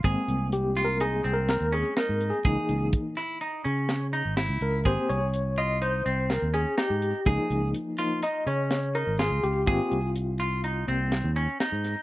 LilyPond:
<<
  \new Staff \with { instrumentName = "Tine electric piano" } { \time 5/4 \key aes \major \tempo 4 = 125 r4 \tuplet 3/2 { g'4 bes'8 aes'4 bes'8 } bes'8 aes'8 \tuplet 3/2 { bes'4 aes'8~ } | aes'4 r2. r8 bes'8 | c''8 des''4 ees''8 c''4 bes'8 aes'8 g'4 | aes'4 r4 ees''8 des''4 bes'8 aes'8 g'8 |
f'2~ f'8 r2 r8 | }
  \new Staff \with { instrumentName = "Tine electric piano" } { \time 5/4 \key aes \major <aes bes c'>1~ <aes bes c'>4 | <fes bes ees'>4. r2. r8 | <bes c' g'>8 r1 r8 | <f bes ees'>4. <f bes ees'>8 r2. |
<bes c' g'>8 r2 <g bes c'>8 r2 | }
  \new Staff \with { instrumentName = "Clean electric guitar" } { \time 5/4 \key aes \major aes'4 r8 f'8 ees'8 c'4 des'8 ees'4 | aes'4 r8 fes'8 ees'8 des'4 ees'8 fes'4 | aes'4 r8 f'8 ees'8 c'4 des'8 ees'4 | aes'4 r8 f'8 ees'8 des'4 ees'8 f'4 |
aes'4 r8 f'8 ees'8 c'4 des'8 ees'4 | }
  \new Staff \with { instrumentName = "Fingered electric bass" } { \clef bass \time 5/4 \key aes \major aes,,16 r16 c,2 c,8. ees,8 r8 aes,8 r16 | des,16 r16 des,8 r4. des4~ des16 aes,,8 des,16 des,8 | aes,,16 r16 c,2 c,8. ees,8 r8 aes,8 r16 | des,16 r16 des,8 r4. des4~ des16 aes,,8 des,16 des,8 |
aes,,16 r16 c,2 c,8. ees,8 r8 aes,8 r16 | }
  \new DrumStaff \with { instrumentName = "Drums" } \drummode { \time 5/4 <hh bd>8 hh8 hh8 <hh sn>8 hh8 hh8 <hh sn>8 hh8 <hh sn>8 hh8 | <hh bd>8 hh8 <hh bd>8 <hh sn>8 hh8 hh8 <hh sn>8 hh8 <hh sn>8 hh8 | <hh bd>8 hh8 hh8 hh8 hh8 hh8 <hh sn>8 hh8 <hh sn>8 hh8 | <hh bd>8 hh8 hh8 hh8 <hh sn>8 hh8 <hh sn>8 hh8 <hh sn>8 hh8 |
<hh bd>8 hh8 hh8 hh8 hh8 hh8 <hh sn>8 hh8 <hh sn>8 <hh sn>8 | }
>>